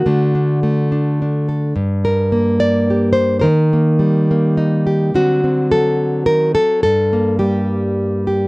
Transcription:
0.00 1.76 F#4 medium
0.06 1.73 D3 medium
0.06 0.63 A3 medium
0.06 0.35 D4 medium
0.35 0.91 D4 soft
0.63 1.73 A3 medium
0.92 1.20 D4 soft
1.22 1.74 D4 soft
1.49 1.73 A4 soft
1.76 3.46 G2 medium
2.05 2.60 A#4 medium
2.32 3.42 A#3 medium
2.60 3.12 D5 loud
2.90 3.43 G4 soft
3.13 3.36 C5 medium
3.40 5.10 D#3 medium
3.40 4.85 A#4 medium
3.40 3.46 C5 medium
3.73 4.30 A#3 soft
3.99 5.10 G3 medium
4.31 5.15 A#3 soft
4.57 5.11 D#4 soft
4.87 5.15 G4 medium
5.14 6.27 D3 medium
5.14 5.71 F#3 soft
5.14 5.43 C4 soft
5.14 6.28 F#4 loud
5.44 6.81 C4 soft
5.72 6.53 F#3 medium
5.72 6.26 A4 loud
6.26 6.56 D#3 medium
6.26 6.54 A#4 loud
6.54 6.83 F#3 medium
6.54 6.82 A4 loud
6.83 8.48 G2 medium
6.83 7.39 A4 loud
7.13 8.48 A#3 soft
7.39 8.48 G3 medium
7.39 8.26 G4 medium
8.27 8.48 G4 soft

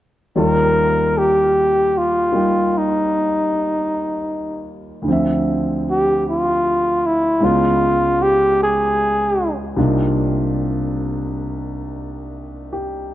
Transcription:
0.36 5.07 D#2 soft
0.36 5.07 D#3 soft
0.36 2.31 G3 soft
0.36 5.08 F4 soft
0.36 1.20 A#4 medium
0.36 5.08 D5 soft
1.18 1.99 G4 medium
1.98 2.79 F4 medium
2.32 5.07 G3 soft
2.32 5.07 A#3 soft
2.32 5.08 D#4 soft
2.32 5.09 G4 soft
2.78 4.70 D#4 medium
5.02 7.40 D2 soft
5.02 7.41 D3 soft
5.08 7.43 F3 soft
5.08 7.44 C4 soft
5.13 7.45 E5 soft
5.90 6.24 G4 medium
6.30 7.08 F4 medium
7.06 7.46 E4 medium
7.40 9.76 C#2 soft
7.40 9.77 C#3 soft
7.40 9.78 G#3 soft
7.40 9.78 B3 soft
7.40 8.24 F4 medium
7.45 9.78 F4 soft
8.22 8.61 G4 medium
8.63 9.55 G#4 medium
9.77 13.14 C2 soft
9.77 13.14 C3 soft
9.77 13.14 A#3 soft
9.77 13.14 D4 soft
9.77 13.14 D#4 soft
9.77 13.14 F4 soft
12.73 13.14 G4 soft

